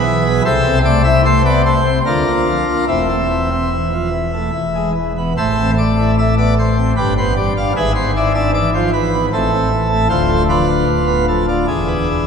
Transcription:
pipe organ
Already playing: B1 B2 E4 G#4 B4
0.06 E3
0.27 B3
0.45 C2 C3 A4 C5 E5
0.65 C4
0.85 A3 D5
1.04 E4 E5
1.25 A3 C5
1.45 B3 D5
1.65 A3 C5
1.86 C4
2.06 D2 D3 D4 F4 A#4
2.27 A#3
2.47 F3
2.67 A#3
2.88 E1 E2 A3 C4 E4
3.09 A3
3.30 E3
3.51 C4
3.72 E3
3.93 F3
4.13 E3
4.34 A3
4.55 E1 E2
4.75 G#3
4.95 E3
5.18 B3
5.37 A1 A2 A4 C5 E5
5.58 C4
5.78 A3 D5
5.99 E4
6.18 A3 E5
6.38 B3 D5
6.59 A3 C5
6.77 C4
6.97 G1 G2 D4 G4 B4
7.18 B3 C5
7.37 G3 D5
7.57 D4 F5
7.77 G#1 G#2 G#4 B4 E5
7.95 B3 C5
8.17 E4 D5
8.34 D4 E5
8.54 E3 D5
8.75 F3 C5
8.93 E3 B4
9.13 B3
9.33 A1 A2 C4 E4 A4
9.52 C4
9.70 E3
9.91 A3
10.09 D1 D2 F4 A4 C5
10.29 A3
10.49 F3 D4 F4 B4
10.68 D4
10.87 D1 D2
11.07 B3
11.27 F3 A4
11.48 D4 F4
11.67 E1 E2 D4 E4 G#4
11.88 B3
12.10 E3

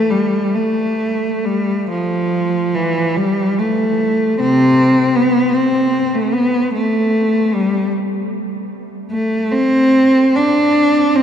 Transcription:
cello
0.10 G3
0.55 A3
1.45 G3
1.90 F3
2.75 E3
3.16 G3
3.58 A3
4.40 C3 C4
5.16 B3
5.54 C4
6.15 A3
6.34 B3
6.74 A3
7.54 G3
9.12 A3
9.52 C4
10.35 D4
11.16 C4

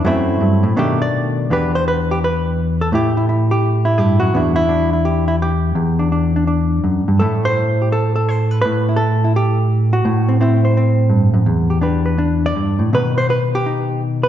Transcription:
hollow-body jazz guitar
0.04 F#2 F#3 A3 C4 E4
0.41 G2
0.63 A2
0.77 B2 D#3 A3 D4 G4
1.02 D5
1.50 E2 B3 D4 G4 B4
1.75 C5
1.88 B4
2.11 G4
2.24 B4
2.81 A4
2.92 A2 A3 E4 G4
3.17 E4
3.29 E4
3.51 G4
3.85 E4
3.98 G2 G4
4.20 F#2 F#4
4.34 E2 B3 D4 E4
4.56 E4
4.69 D4
4.93 E4
5.05 G4
5.28 E4
5.42 G4
5.75 E2
5.99 D4
6.12 D4
6.36 D4
6.47 D4
6.84 F#2
7.08 G2
7.20 A2 A3 E4 A4
7.45 C5
7.82 G4
7.92 A4
8.16 A4
8.29 C5
8.51 B4
8.62 A2 B4
8.89 E4
8.96 A4
9.24 E4
9.36 G4
9.93 F#4
10.05 A2
10.29 C4
10.41 C4 E4 C5
10.65 C5
10.77 C4
11.10 G2
11.34 F#2
11.46 E2
11.70 G4
11.81 D4 G4 B4
12.06 B4
12.18 D4
12.46 D5
12.56 G2
12.79 A2
12.93 B2 D#3 D#4 B4
13.18 C5
13.30 B4
13.55 G4
13.66 D#4
14.23 B4

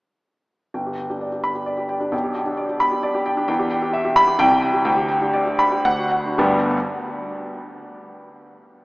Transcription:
grand piano
0.74 G1 G5
0.86 G4
0.98 G5
1.10 D4 G4
1.21 D5
1.32 G4
1.44 B5
1.55 G4
1.66 D5
1.77 G4
1.89 G5
2.00 D4 G4
2.12 B1 G5
2.24 G4
2.35 G5
2.46 D4 G4
2.57 D5
2.69 G4
2.80 B5
2.92 G4
3.03 D5
3.15 G4
3.26 G5
3.37 D4 G4
3.48 E2 G5
3.59 G4
3.71 G5
3.82 G4
3.93 E5
4.05 G4
4.16 B5
4.27 G4
4.39 C2 G5
4.51 G4
4.62 G5
4.73 G4
4.85 D2 G5
4.97 G4
5.09 G5
5.21 D4 G4
5.33 D5
5.46 G4
5.59 B5
5.72 G4
5.85 D2 F#5
5.98 F#4
6.11 F#5
6.25 D4 F#4
6.38 G1 D2 G3 B3 D4 G4

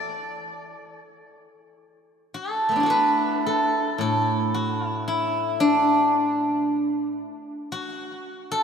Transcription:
guzheng
Already playing: E3 E4 F#4 A4 D5
2.34 A4
2.69 A3 B3
2.76 D4
2.80 E4 F#4
2.86 A4 B4
3.46 A4
3.98 A2 A4
4.54 F#4
4.86 E4
5.08 E4
5.60 D4
7.72 F#4
8.52 A4

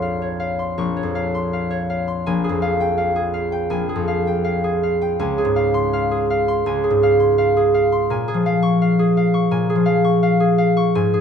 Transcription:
harp
Already playing: A#1 F2 C5 C#5 C6 C#6
0.02 F5
0.22 C#5
0.40 F5
0.59 C6
0.78 A#1 C#6
0.97 C#5
1.03 F2
1.15 F5
1.34 C6
1.53 F5
1.71 C#5
1.90 F5
2.08 C6
2.26 A#1 G#5
2.44 G#4
2.49 F2
2.62 F5
2.80 G5
2.98 F5
3.16 G#4
3.34 F5
3.52 G5
3.70 A#1 G#5
3.89 G#4
3.96 F2
4.08 F5
4.27 G5
4.44 F5
4.64 G#4
4.83 F5
5.02 G5
5.19 C#2 G#5
5.38 G#4
5.45 G#2
5.56 F5
5.74 C6
5.93 F5
6.11 G#4
6.30 F5
6.48 C6
6.66 C#2 G#5
6.84 G#4
6.90 G#2
7.03 F5
7.20 C6
7.38 F5
7.57 G#4
7.74 F5
7.92 C6
8.10 A#2 G#5
8.28 G#4
8.34 F3
8.46 F5
8.63 C#6
8.82 F5
8.99 G#4
9.17 F5
9.34 C#6
9.51 A#2 G#5
9.70 G#4
9.75 F3
9.86 F5
10.04 C#6
10.23 F5
10.40 G#4
10.58 F5
10.77 C#6
10.95 G#2 G#5
11.14 G#4

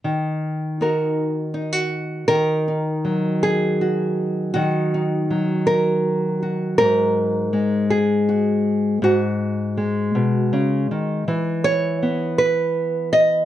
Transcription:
nylon-string guitar
0.04 D#3
0.81 D#4 F#4 A#4
1.54 D#4
1.73 F#4
2.28 D#3 A#4
2.68 D#4
3.05 F#3
3.43 G#4
3.81 F#4
4.54 D#3 F#4
4.94 D#4
5.30 F#3
5.67 A#4
6.42 F#4
6.78 G#2 A#4
7.53 G#3
7.90 G#4
8.29 F#4
9.02 G#2 F#4
9.77 G#3
10.15 B2
10.53 C#3
10.91 D#3
11.28 E3
11.64 C#5
12.02 B3
12.38 B4
13.13 D#5

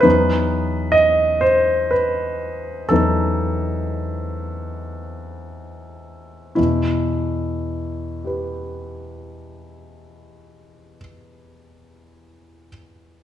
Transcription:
grand piano
0.00 E2 F#3 B3 D#4 B4
0.92 D#5
1.41 C5
1.91 B4
2.89 E2 F#3 B3 D#4 A4
6.55 E2 B2 E4
8.24 G4 B4

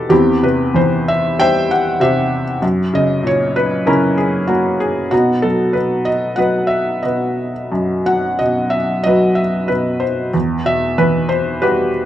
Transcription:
felt piano
Already playing: B2 E3 G3 E4 G4 A4 B4 C5
0.09 E2 C4 E4 G4
0.43 C3 B4
0.74 E3 C5
1.08 E5
1.39 G3 C5 E5 G5
1.71 F#5
2.00 C3 G4 C5 E5
2.62 F#2
2.93 C#3 D#5
3.23 A#2 C#5
3.56 B4
3.86 C#3 C#4 E4 A#4
4.18 G#4
4.47 A#3 F#4
4.80 G#4
5.11 B2 B3 D#4 F#4
5.42 F#3 A4
5.73 B2 B4
6.05 D#5
6.36 F#3 B4 D#5 F#5
6.67 E5
7.03 B2 F#4 B4 D#5
7.72 F#2
8.06 F#3 F#5
8.39 B2 D#5
8.70 E5
9.04 F#3 F#4 B4 D#5
9.35 E5
9.68 B2 B4
10.00 C5
10.34 E2
10.65 B2 E5
10.98 E3 B4
11.29 C5
11.62 G3 F#4 G4 B4

